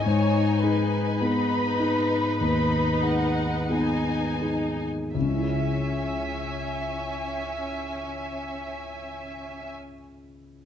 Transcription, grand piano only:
X:1
M:4/4
L:1/8
Q:1/4=43
K:C#m
V:1 name="Grand piano"
G,, [DG] [B,DG] [DG] D,, [DG] [B,DG] [DG] | [C,,C,CEGe]8 |]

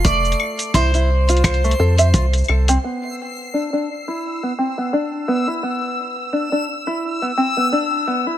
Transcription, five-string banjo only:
X:1
M:4/4
L:1/16
Q:"Swing 16ths" 1/4=86
K:C
V:1 name="Five-string banjo"
A,4 E E z F2 A, A e F z A C | B,4 D D z E2 B, C B, D2 B, E | B,4 D D z E2 B, C B, D2 B, E |]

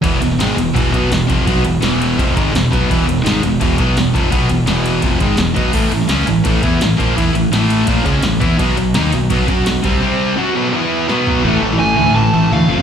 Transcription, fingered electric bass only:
X:1
M:4/4
L:1/8
Q:1/4=168
K:none
V:1 name="Fingered electric bass" clef=bass
E,,, E,,, ^G,,, E,,, E,,, B,,, E,,, F,,, | B,,, E,,, E,,,2 F,,, ^G,,, E,,, B,,, | E,,, E,,, ^G,,, E,,, E,,, B,,, E,,, F,,, | B,,, E,,, E,,,2 F,,, ^G,,, E,,, B,,, |
A,,, A,,, ^C,, A,,, A,,, E,, A,,, ^A,,, | E,, A,,, A,,,2 ^A,,, ^C,, =A,,, E,, | B,,, B,,, ^D,, B,,, B,,, ^F,, B,,, C,, | z8 |
A,,, A,,, A,,, D,, A,,, A,,, D,, F,,, |]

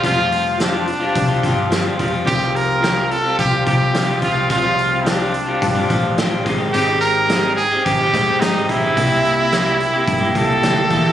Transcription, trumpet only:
X:1
M:4/4
L:1/8
Q:1/4=108
K:Cmix
V:1 name="Trumpet"
F2 D4 z2 | G B2 A G G2 F | F2 D4 z2 | G B2 _A G2 _E =E- |
E4- E A3 |]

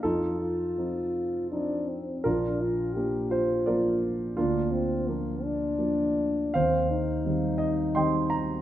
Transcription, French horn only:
X:1
M:3/4
L:1/8
Q:1/4=84
K:Bb
V:1 name="French horn"
F F3 D C | D F G F2 z | D C B, D3 | C E4- E |]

